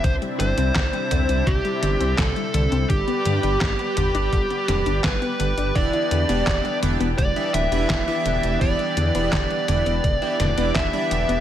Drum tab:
HH |xxxxxxxxxxxxxxxx|xxxxxxxxxxxxxxxx|xxxxxxxxxxxxxxxx|xxxxxxxxxxxxxxxx|
CP |----x-------x---|----x-------x---|----x-------x---|----x-------x---|
SD |----o-------o---|----o-----o-o---|----o-------o---|----o-----o-o---|
T2 |------o---------|------o---o-----|------o---------|------o---o-----|
BD |o---o---o---o---|o---o---o---o---|o---o---o---o---|o---o---o---o---|